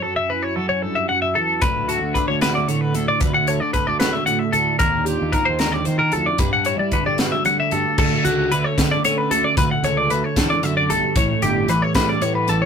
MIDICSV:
0, 0, Header, 1, 5, 480
1, 0, Start_track
1, 0, Tempo, 529568
1, 37, Time_signature, 6, 3, 24, 8
1, 11471, End_track
2, 0, Start_track
2, 0, Title_t, "Clean electric guitar"
2, 0, Program_c, 0, 27
2, 22, Note_on_c, 0, 69, 75
2, 144, Note_off_c, 0, 69, 0
2, 147, Note_on_c, 0, 76, 77
2, 269, Note_on_c, 0, 71, 72
2, 272, Note_off_c, 0, 76, 0
2, 385, Note_off_c, 0, 71, 0
2, 385, Note_on_c, 0, 73, 73
2, 508, Note_off_c, 0, 73, 0
2, 508, Note_on_c, 0, 69, 70
2, 621, Note_off_c, 0, 69, 0
2, 625, Note_on_c, 0, 73, 65
2, 747, Note_off_c, 0, 73, 0
2, 747, Note_on_c, 0, 69, 81
2, 865, Note_on_c, 0, 76, 59
2, 871, Note_off_c, 0, 69, 0
2, 984, Note_off_c, 0, 76, 0
2, 987, Note_on_c, 0, 78, 74
2, 1101, Note_off_c, 0, 78, 0
2, 1105, Note_on_c, 0, 76, 71
2, 1226, Note_on_c, 0, 69, 72
2, 1230, Note_off_c, 0, 76, 0
2, 1465, Note_on_c, 0, 71, 80
2, 1470, Note_off_c, 0, 69, 0
2, 1708, Note_on_c, 0, 66, 69
2, 1709, Note_off_c, 0, 71, 0
2, 1943, Note_on_c, 0, 71, 63
2, 1950, Note_off_c, 0, 66, 0
2, 2063, Note_off_c, 0, 71, 0
2, 2067, Note_on_c, 0, 73, 71
2, 2189, Note_off_c, 0, 73, 0
2, 2193, Note_on_c, 0, 71, 82
2, 2308, Note_off_c, 0, 71, 0
2, 2312, Note_on_c, 0, 74, 69
2, 2431, Note_off_c, 0, 74, 0
2, 2431, Note_on_c, 0, 73, 76
2, 2547, Note_off_c, 0, 73, 0
2, 2547, Note_on_c, 0, 71, 63
2, 2675, Note_off_c, 0, 71, 0
2, 2675, Note_on_c, 0, 69, 73
2, 2791, Note_off_c, 0, 69, 0
2, 2795, Note_on_c, 0, 74, 71
2, 2907, Note_off_c, 0, 74, 0
2, 2907, Note_on_c, 0, 71, 74
2, 3028, Note_off_c, 0, 71, 0
2, 3031, Note_on_c, 0, 78, 69
2, 3152, Note_off_c, 0, 78, 0
2, 3153, Note_on_c, 0, 73, 73
2, 3264, Note_off_c, 0, 73, 0
2, 3264, Note_on_c, 0, 74, 72
2, 3381, Note_off_c, 0, 74, 0
2, 3384, Note_on_c, 0, 71, 64
2, 3508, Note_off_c, 0, 71, 0
2, 3508, Note_on_c, 0, 74, 75
2, 3618, Note_off_c, 0, 74, 0
2, 3622, Note_on_c, 0, 71, 79
2, 3743, Note_on_c, 0, 76, 59
2, 3747, Note_off_c, 0, 71, 0
2, 3858, Note_off_c, 0, 76, 0
2, 3862, Note_on_c, 0, 78, 74
2, 3980, Note_off_c, 0, 78, 0
2, 3980, Note_on_c, 0, 76, 68
2, 4102, Note_on_c, 0, 69, 66
2, 4106, Note_off_c, 0, 76, 0
2, 4337, Note_off_c, 0, 69, 0
2, 4341, Note_on_c, 0, 70, 78
2, 4580, Note_off_c, 0, 70, 0
2, 4580, Note_on_c, 0, 67, 69
2, 4826, Note_off_c, 0, 67, 0
2, 4826, Note_on_c, 0, 70, 68
2, 4944, Note_on_c, 0, 72, 70
2, 4949, Note_off_c, 0, 70, 0
2, 5070, Note_off_c, 0, 72, 0
2, 5070, Note_on_c, 0, 70, 80
2, 5186, Note_off_c, 0, 70, 0
2, 5186, Note_on_c, 0, 74, 64
2, 5308, Note_off_c, 0, 74, 0
2, 5308, Note_on_c, 0, 72, 74
2, 5424, Note_off_c, 0, 72, 0
2, 5428, Note_on_c, 0, 70, 70
2, 5550, Note_off_c, 0, 70, 0
2, 5554, Note_on_c, 0, 69, 72
2, 5673, Note_off_c, 0, 69, 0
2, 5676, Note_on_c, 0, 74, 74
2, 5795, Note_off_c, 0, 74, 0
2, 5795, Note_on_c, 0, 71, 80
2, 5914, Note_off_c, 0, 71, 0
2, 5917, Note_on_c, 0, 78, 73
2, 6035, Note_off_c, 0, 78, 0
2, 6038, Note_on_c, 0, 73, 72
2, 6154, Note_off_c, 0, 73, 0
2, 6157, Note_on_c, 0, 74, 64
2, 6275, Note_off_c, 0, 74, 0
2, 6282, Note_on_c, 0, 71, 67
2, 6397, Note_off_c, 0, 71, 0
2, 6401, Note_on_c, 0, 74, 65
2, 6521, Note_off_c, 0, 74, 0
2, 6521, Note_on_c, 0, 71, 86
2, 6635, Note_on_c, 0, 76, 62
2, 6637, Note_off_c, 0, 71, 0
2, 6753, Note_off_c, 0, 76, 0
2, 6759, Note_on_c, 0, 78, 73
2, 6875, Note_off_c, 0, 78, 0
2, 6886, Note_on_c, 0, 76, 67
2, 6999, Note_off_c, 0, 76, 0
2, 6999, Note_on_c, 0, 69, 66
2, 7228, Note_off_c, 0, 69, 0
2, 7239, Note_on_c, 0, 69, 85
2, 7474, Note_on_c, 0, 66, 77
2, 7476, Note_off_c, 0, 69, 0
2, 7713, Note_off_c, 0, 66, 0
2, 7718, Note_on_c, 0, 71, 74
2, 7835, Note_off_c, 0, 71, 0
2, 7835, Note_on_c, 0, 73, 75
2, 7959, Note_off_c, 0, 73, 0
2, 7959, Note_on_c, 0, 71, 79
2, 8076, Note_off_c, 0, 71, 0
2, 8080, Note_on_c, 0, 74, 63
2, 8196, Note_off_c, 0, 74, 0
2, 8202, Note_on_c, 0, 73, 79
2, 8320, Note_off_c, 0, 73, 0
2, 8320, Note_on_c, 0, 71, 67
2, 8436, Note_off_c, 0, 71, 0
2, 8440, Note_on_c, 0, 69, 77
2, 8556, Note_off_c, 0, 69, 0
2, 8560, Note_on_c, 0, 74, 77
2, 8676, Note_off_c, 0, 74, 0
2, 8680, Note_on_c, 0, 71, 78
2, 8796, Note_off_c, 0, 71, 0
2, 8805, Note_on_c, 0, 78, 76
2, 8919, Note_off_c, 0, 78, 0
2, 8923, Note_on_c, 0, 73, 82
2, 9038, Note_off_c, 0, 73, 0
2, 9040, Note_on_c, 0, 74, 76
2, 9156, Note_off_c, 0, 74, 0
2, 9159, Note_on_c, 0, 71, 66
2, 9282, Note_off_c, 0, 71, 0
2, 9282, Note_on_c, 0, 73, 69
2, 9401, Note_off_c, 0, 73, 0
2, 9401, Note_on_c, 0, 69, 78
2, 9516, Note_off_c, 0, 69, 0
2, 9518, Note_on_c, 0, 74, 65
2, 9639, Note_off_c, 0, 74, 0
2, 9639, Note_on_c, 0, 76, 85
2, 9755, Note_off_c, 0, 76, 0
2, 9762, Note_on_c, 0, 74, 66
2, 9877, Note_off_c, 0, 74, 0
2, 9879, Note_on_c, 0, 69, 74
2, 10116, Note_off_c, 0, 69, 0
2, 10121, Note_on_c, 0, 73, 88
2, 10356, Note_on_c, 0, 67, 81
2, 10357, Note_off_c, 0, 73, 0
2, 10599, Note_off_c, 0, 67, 0
2, 10599, Note_on_c, 0, 71, 72
2, 10716, Note_off_c, 0, 71, 0
2, 10716, Note_on_c, 0, 73, 70
2, 10832, Note_off_c, 0, 73, 0
2, 10836, Note_on_c, 0, 71, 82
2, 10954, Note_off_c, 0, 71, 0
2, 10961, Note_on_c, 0, 74, 68
2, 11076, Note_off_c, 0, 74, 0
2, 11077, Note_on_c, 0, 73, 77
2, 11192, Note_off_c, 0, 73, 0
2, 11196, Note_on_c, 0, 71, 67
2, 11314, Note_off_c, 0, 71, 0
2, 11323, Note_on_c, 0, 69, 76
2, 11437, Note_off_c, 0, 69, 0
2, 11437, Note_on_c, 0, 73, 81
2, 11471, Note_off_c, 0, 73, 0
2, 11471, End_track
3, 0, Start_track
3, 0, Title_t, "Clean electric guitar"
3, 0, Program_c, 1, 27
3, 0, Note_on_c, 1, 54, 59
3, 20, Note_on_c, 1, 42, 72
3, 29, Note_on_c, 1, 61, 49
3, 273, Note_on_c, 1, 64, 59
3, 300, Note_off_c, 1, 54, 0
3, 500, Note_off_c, 1, 61, 0
3, 506, Note_on_c, 1, 54, 61
3, 515, Note_on_c, 1, 61, 55
3, 756, Note_on_c, 1, 43, 57
3, 982, Note_off_c, 1, 42, 0
3, 993, Note_on_c, 1, 42, 57
3, 995, Note_off_c, 1, 43, 0
3, 1233, Note_off_c, 1, 42, 0
3, 1236, Note_on_c, 1, 40, 56
3, 1443, Note_off_c, 1, 61, 0
3, 1444, Note_off_c, 1, 64, 0
3, 1465, Note_off_c, 1, 40, 0
3, 1468, Note_on_c, 1, 38, 70
3, 1476, Note_on_c, 1, 62, 54
3, 1714, Note_on_c, 1, 69, 57
3, 1949, Note_off_c, 1, 54, 0
3, 1953, Note_on_c, 1, 50, 59
3, 1956, Note_off_c, 1, 62, 0
3, 1960, Note_on_c, 1, 62, 54
3, 2202, Note_off_c, 1, 69, 0
3, 2206, Note_on_c, 1, 66, 59
3, 2439, Note_on_c, 1, 45, 58
3, 2677, Note_off_c, 1, 62, 0
3, 2681, Note_on_c, 1, 62, 54
3, 2887, Note_off_c, 1, 45, 0
3, 2890, Note_off_c, 1, 66, 0
3, 2900, Note_off_c, 1, 38, 0
3, 2910, Note_on_c, 1, 38, 65
3, 2916, Note_off_c, 1, 62, 0
3, 2920, Note_on_c, 1, 62, 55
3, 3160, Note_on_c, 1, 69, 56
3, 3379, Note_off_c, 1, 50, 0
3, 3390, Note_on_c, 1, 50, 64
3, 3392, Note_off_c, 1, 62, 0
3, 3396, Note_on_c, 1, 62, 58
3, 3636, Note_off_c, 1, 69, 0
3, 3648, Note_on_c, 1, 66, 53
3, 3876, Note_on_c, 1, 45, 57
3, 4121, Note_off_c, 1, 62, 0
3, 4125, Note_on_c, 1, 62, 58
3, 4325, Note_off_c, 1, 45, 0
3, 4331, Note_off_c, 1, 66, 0
3, 4351, Note_off_c, 1, 38, 0
3, 4363, Note_on_c, 1, 39, 68
3, 4367, Note_off_c, 1, 62, 0
3, 4370, Note_on_c, 1, 62, 62
3, 4603, Note_on_c, 1, 65, 57
3, 4831, Note_off_c, 1, 50, 0
3, 4835, Note_on_c, 1, 51, 60
3, 4840, Note_off_c, 1, 62, 0
3, 4844, Note_on_c, 1, 62, 57
3, 5070, Note_off_c, 1, 39, 0
3, 5074, Note_on_c, 1, 38, 62
3, 5311, Note_off_c, 1, 38, 0
3, 5314, Note_on_c, 1, 39, 61
3, 5552, Note_off_c, 1, 39, 0
3, 5556, Note_on_c, 1, 41, 61
3, 5765, Note_off_c, 1, 51, 0
3, 5769, Note_off_c, 1, 65, 0
3, 5790, Note_on_c, 1, 43, 67
3, 5794, Note_off_c, 1, 41, 0
3, 5795, Note_off_c, 1, 62, 0
3, 5799, Note_on_c, 1, 62, 59
3, 6045, Note_on_c, 1, 64, 55
3, 6276, Note_off_c, 1, 62, 0
3, 6280, Note_on_c, 1, 50, 64
3, 6282, Note_on_c, 1, 59, 51
3, 6401, Note_off_c, 1, 59, 0
3, 6401, Note_on_c, 1, 62, 43
3, 6519, Note_off_c, 1, 64, 0
3, 6524, Note_on_c, 1, 66, 57
3, 6751, Note_off_c, 1, 43, 0
3, 6760, Note_on_c, 1, 38, 61
3, 6997, Note_off_c, 1, 62, 0
3, 7009, Note_on_c, 1, 62, 52
3, 7209, Note_off_c, 1, 66, 0
3, 7212, Note_off_c, 1, 62, 0
3, 7230, Note_off_c, 1, 38, 0
3, 7241, Note_on_c, 1, 38, 71
3, 7489, Note_on_c, 1, 57, 69
3, 7707, Note_off_c, 1, 50, 0
3, 7718, Note_on_c, 1, 50, 63
3, 7962, Note_off_c, 1, 57, 0
3, 7966, Note_on_c, 1, 57, 64
3, 8204, Note_on_c, 1, 61, 59
3, 8429, Note_off_c, 1, 50, 0
3, 8439, Note_on_c, 1, 50, 65
3, 8662, Note_off_c, 1, 38, 0
3, 8673, Note_on_c, 1, 38, 73
3, 8701, Note_off_c, 1, 61, 0
3, 8924, Note_off_c, 1, 57, 0
3, 8928, Note_on_c, 1, 57, 65
3, 9150, Note_off_c, 1, 50, 0
3, 9161, Note_on_c, 1, 50, 65
3, 9393, Note_off_c, 1, 38, 0
3, 9401, Note_on_c, 1, 40, 67
3, 9636, Note_off_c, 1, 40, 0
3, 9645, Note_on_c, 1, 42, 67
3, 9874, Note_on_c, 1, 43, 66
3, 9878, Note_off_c, 1, 42, 0
3, 10112, Note_off_c, 1, 43, 0
3, 10115, Note_on_c, 1, 45, 78
3, 10116, Note_off_c, 1, 50, 0
3, 10347, Note_off_c, 1, 57, 0
3, 10351, Note_on_c, 1, 55, 67
3, 10584, Note_on_c, 1, 52, 64
3, 10828, Note_off_c, 1, 55, 0
3, 10831, Note_on_c, 1, 55, 60
3, 11084, Note_on_c, 1, 59, 57
3, 11303, Note_off_c, 1, 52, 0
3, 11314, Note_on_c, 1, 52, 63
3, 11471, Note_off_c, 1, 45, 0
3, 11471, Note_off_c, 1, 52, 0
3, 11471, Note_off_c, 1, 55, 0
3, 11471, Note_off_c, 1, 59, 0
3, 11471, End_track
4, 0, Start_track
4, 0, Title_t, "Fingered electric bass"
4, 0, Program_c, 2, 33
4, 1469, Note_on_c, 2, 38, 92
4, 1798, Note_off_c, 2, 38, 0
4, 1821, Note_on_c, 2, 38, 77
4, 1936, Note_off_c, 2, 38, 0
4, 2068, Note_on_c, 2, 38, 79
4, 2397, Note_off_c, 2, 38, 0
4, 2433, Note_on_c, 2, 50, 77
4, 2651, Note_off_c, 2, 50, 0
4, 2672, Note_on_c, 2, 38, 92
4, 2781, Note_off_c, 2, 38, 0
4, 2909, Note_on_c, 2, 38, 96
4, 3237, Note_off_c, 2, 38, 0
4, 3269, Note_on_c, 2, 50, 76
4, 3380, Note_off_c, 2, 50, 0
4, 3520, Note_on_c, 2, 38, 90
4, 3734, Note_off_c, 2, 38, 0
4, 3873, Note_on_c, 2, 50, 71
4, 3982, Note_off_c, 2, 50, 0
4, 4112, Note_on_c, 2, 38, 93
4, 4221, Note_off_c, 2, 38, 0
4, 4349, Note_on_c, 2, 39, 94
4, 4677, Note_off_c, 2, 39, 0
4, 4726, Note_on_c, 2, 39, 91
4, 4829, Note_off_c, 2, 39, 0
4, 4968, Note_on_c, 2, 39, 84
4, 5288, Note_off_c, 2, 39, 0
4, 5318, Note_on_c, 2, 51, 78
4, 5533, Note_off_c, 2, 51, 0
4, 5559, Note_on_c, 2, 38, 94
4, 5665, Note_off_c, 2, 38, 0
4, 5791, Note_on_c, 2, 43, 92
4, 6118, Note_off_c, 2, 43, 0
4, 6154, Note_on_c, 2, 55, 71
4, 6262, Note_off_c, 2, 55, 0
4, 6397, Note_on_c, 2, 43, 91
4, 6613, Note_off_c, 2, 43, 0
4, 6759, Note_on_c, 2, 55, 76
4, 6865, Note_off_c, 2, 55, 0
4, 6998, Note_on_c, 2, 43, 90
4, 7104, Note_off_c, 2, 43, 0
4, 7232, Note_on_c, 2, 38, 91
4, 7341, Note_off_c, 2, 38, 0
4, 7479, Note_on_c, 2, 37, 104
4, 7694, Note_off_c, 2, 37, 0
4, 7714, Note_on_c, 2, 38, 91
4, 7822, Note_off_c, 2, 38, 0
4, 7955, Note_on_c, 2, 50, 100
4, 8063, Note_off_c, 2, 50, 0
4, 8199, Note_on_c, 2, 50, 82
4, 8414, Note_off_c, 2, 50, 0
4, 8438, Note_on_c, 2, 38, 86
4, 8545, Note_off_c, 2, 38, 0
4, 8677, Note_on_c, 2, 38, 96
4, 8784, Note_off_c, 2, 38, 0
4, 8906, Note_on_c, 2, 37, 95
4, 9127, Note_off_c, 2, 37, 0
4, 9150, Note_on_c, 2, 38, 98
4, 9260, Note_off_c, 2, 38, 0
4, 9396, Note_on_c, 2, 50, 96
4, 9503, Note_off_c, 2, 50, 0
4, 9641, Note_on_c, 2, 50, 84
4, 9855, Note_off_c, 2, 50, 0
4, 9879, Note_on_c, 2, 35, 88
4, 9985, Note_off_c, 2, 35, 0
4, 10112, Note_on_c, 2, 33, 97
4, 10221, Note_off_c, 2, 33, 0
4, 10356, Note_on_c, 2, 31, 104
4, 10572, Note_off_c, 2, 31, 0
4, 10591, Note_on_c, 2, 33, 94
4, 10700, Note_off_c, 2, 33, 0
4, 10830, Note_on_c, 2, 45, 107
4, 10940, Note_off_c, 2, 45, 0
4, 11074, Note_on_c, 2, 45, 79
4, 11291, Note_off_c, 2, 45, 0
4, 11315, Note_on_c, 2, 33, 83
4, 11422, Note_off_c, 2, 33, 0
4, 11471, End_track
5, 0, Start_track
5, 0, Title_t, "Drums"
5, 1464, Note_on_c, 9, 42, 89
5, 1469, Note_on_c, 9, 36, 113
5, 1555, Note_off_c, 9, 42, 0
5, 1559, Note_off_c, 9, 36, 0
5, 1711, Note_on_c, 9, 42, 58
5, 1801, Note_off_c, 9, 42, 0
5, 1950, Note_on_c, 9, 36, 67
5, 1951, Note_on_c, 9, 42, 60
5, 2040, Note_off_c, 9, 36, 0
5, 2042, Note_off_c, 9, 42, 0
5, 2188, Note_on_c, 9, 42, 75
5, 2197, Note_on_c, 9, 38, 100
5, 2278, Note_off_c, 9, 42, 0
5, 2287, Note_off_c, 9, 38, 0
5, 2434, Note_on_c, 9, 42, 59
5, 2525, Note_off_c, 9, 42, 0
5, 2669, Note_on_c, 9, 42, 56
5, 2760, Note_off_c, 9, 42, 0
5, 2905, Note_on_c, 9, 42, 85
5, 2909, Note_on_c, 9, 36, 113
5, 2995, Note_off_c, 9, 42, 0
5, 2999, Note_off_c, 9, 36, 0
5, 3148, Note_on_c, 9, 42, 55
5, 3238, Note_off_c, 9, 42, 0
5, 3386, Note_on_c, 9, 42, 56
5, 3389, Note_on_c, 9, 36, 68
5, 3476, Note_off_c, 9, 42, 0
5, 3479, Note_off_c, 9, 36, 0
5, 3624, Note_on_c, 9, 42, 75
5, 3633, Note_on_c, 9, 38, 109
5, 3715, Note_off_c, 9, 42, 0
5, 3724, Note_off_c, 9, 38, 0
5, 3867, Note_on_c, 9, 42, 59
5, 3958, Note_off_c, 9, 42, 0
5, 4107, Note_on_c, 9, 42, 60
5, 4198, Note_off_c, 9, 42, 0
5, 4345, Note_on_c, 9, 42, 85
5, 4349, Note_on_c, 9, 36, 105
5, 4435, Note_off_c, 9, 42, 0
5, 4439, Note_off_c, 9, 36, 0
5, 4587, Note_on_c, 9, 42, 64
5, 4678, Note_off_c, 9, 42, 0
5, 4829, Note_on_c, 9, 36, 71
5, 4829, Note_on_c, 9, 42, 61
5, 4920, Note_off_c, 9, 36, 0
5, 4920, Note_off_c, 9, 42, 0
5, 5065, Note_on_c, 9, 42, 76
5, 5074, Note_on_c, 9, 38, 93
5, 5156, Note_off_c, 9, 42, 0
5, 5165, Note_off_c, 9, 38, 0
5, 5304, Note_on_c, 9, 42, 60
5, 5395, Note_off_c, 9, 42, 0
5, 5544, Note_on_c, 9, 42, 60
5, 5635, Note_off_c, 9, 42, 0
5, 5786, Note_on_c, 9, 42, 90
5, 5790, Note_on_c, 9, 36, 112
5, 5877, Note_off_c, 9, 42, 0
5, 5880, Note_off_c, 9, 36, 0
5, 6024, Note_on_c, 9, 42, 64
5, 6114, Note_off_c, 9, 42, 0
5, 6268, Note_on_c, 9, 42, 60
5, 6270, Note_on_c, 9, 36, 77
5, 6358, Note_off_c, 9, 42, 0
5, 6361, Note_off_c, 9, 36, 0
5, 6507, Note_on_c, 9, 42, 71
5, 6516, Note_on_c, 9, 38, 94
5, 6598, Note_off_c, 9, 42, 0
5, 6607, Note_off_c, 9, 38, 0
5, 6752, Note_on_c, 9, 42, 61
5, 6842, Note_off_c, 9, 42, 0
5, 6991, Note_on_c, 9, 42, 56
5, 7082, Note_off_c, 9, 42, 0
5, 7233, Note_on_c, 9, 49, 114
5, 7234, Note_on_c, 9, 36, 115
5, 7324, Note_off_c, 9, 49, 0
5, 7325, Note_off_c, 9, 36, 0
5, 7475, Note_on_c, 9, 42, 65
5, 7566, Note_off_c, 9, 42, 0
5, 7719, Note_on_c, 9, 42, 67
5, 7809, Note_off_c, 9, 42, 0
5, 7955, Note_on_c, 9, 36, 74
5, 7958, Note_on_c, 9, 42, 94
5, 7967, Note_on_c, 9, 38, 106
5, 8046, Note_off_c, 9, 36, 0
5, 8048, Note_off_c, 9, 42, 0
5, 8058, Note_off_c, 9, 38, 0
5, 8198, Note_on_c, 9, 42, 70
5, 8289, Note_off_c, 9, 42, 0
5, 8440, Note_on_c, 9, 42, 68
5, 8530, Note_off_c, 9, 42, 0
5, 8675, Note_on_c, 9, 36, 121
5, 8679, Note_on_c, 9, 42, 113
5, 8766, Note_off_c, 9, 36, 0
5, 8769, Note_off_c, 9, 42, 0
5, 8916, Note_on_c, 9, 42, 73
5, 9007, Note_off_c, 9, 42, 0
5, 9158, Note_on_c, 9, 42, 71
5, 9248, Note_off_c, 9, 42, 0
5, 9394, Note_on_c, 9, 36, 73
5, 9394, Note_on_c, 9, 42, 100
5, 9403, Note_on_c, 9, 38, 106
5, 9484, Note_off_c, 9, 36, 0
5, 9485, Note_off_c, 9, 42, 0
5, 9494, Note_off_c, 9, 38, 0
5, 9635, Note_on_c, 9, 42, 71
5, 9726, Note_off_c, 9, 42, 0
5, 9880, Note_on_c, 9, 42, 70
5, 9971, Note_off_c, 9, 42, 0
5, 10112, Note_on_c, 9, 42, 105
5, 10113, Note_on_c, 9, 36, 120
5, 10203, Note_off_c, 9, 42, 0
5, 10204, Note_off_c, 9, 36, 0
5, 10353, Note_on_c, 9, 42, 68
5, 10443, Note_off_c, 9, 42, 0
5, 10590, Note_on_c, 9, 42, 68
5, 10681, Note_off_c, 9, 42, 0
5, 10828, Note_on_c, 9, 42, 85
5, 10831, Note_on_c, 9, 36, 78
5, 10837, Note_on_c, 9, 38, 113
5, 10918, Note_off_c, 9, 42, 0
5, 10921, Note_off_c, 9, 36, 0
5, 10927, Note_off_c, 9, 38, 0
5, 11072, Note_on_c, 9, 42, 73
5, 11163, Note_off_c, 9, 42, 0
5, 11308, Note_on_c, 9, 42, 71
5, 11399, Note_off_c, 9, 42, 0
5, 11471, End_track
0, 0, End_of_file